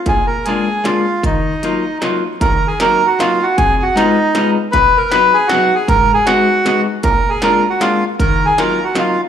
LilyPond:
<<
  \new Staff \with { instrumentName = "Bandoneon" } { \time 3/4 \key ees \minor \tempo 4 = 155 aes'8 bes'8 aes'4 f'4 | ees'2 r4 | \tuplet 3/2 { bes'4 aes'8 bes'4 ges'8 f'4 ges'8 } | \tuplet 3/2 { aes'4 ges'8 } ees'4. r8 |
\tuplet 3/2 { b'4 bes'8 b'4 aes'8 fis'4 aes'8 } | \tuplet 3/2 { bes'4 aes'8 } ges'4. r8 | \tuplet 3/2 { bes'4 aes'8 bes'4 ges'8 } f'8 r8 | \tuplet 3/2 { bes'4 aes'8 bes'4 ges'8 } f'8 r8 | }
  \new Staff \with { instrumentName = "Hollow-body jazz guitar" } { \time 3/4 \key ees \minor bes,4 <aes bes d' f'>8 r8 <aes bes d' f'>8 r8 | ees4 <ges bes ees' f'>8 r8 <ges bes ees' f'>8 r8 | ees4 <ges bes ees' ges'>8 r8 <ges bes ees' ges'>8 r8 | f,4 <aes ces' ees' f'>8 r8 <aes ces' ees' f'>8 r8 |
b,4 <fis b dis' fis'>8 r8 <fis b dis' fis'>8 r8 | aes,4 <aes ces' ees' ges'>8 r8 <aes ces' ees' ges'>8 r8 | bes,4 <aes bes d' f'>8 r8 <aes bes d' f'>8 r8 | ees4 <ges bes ees' f'>8 r8 <ges bes ees' f'>8 r8 | }
  \new DrumStaff \with { instrumentName = "Drums" } \drummode { \time 3/4 <hh bd>4 hh4 <hh sn>4 | <hh bd>4 hh4 <hh sn>4 | <hh bd>4 <hh sn>4 <hh sn>4 | <hh bd>4 <hh sn>4 <hh sn>4 |
<hh bd>4 <hh sn>4 <hh sn>4 | <hh bd>4 <hh sn>4 <hh sn>4 | <hh bd>4 <hh sn>4 <hh sn>4 | <hh bd>4 <hh sn>4 <hh sn>4 | }
>>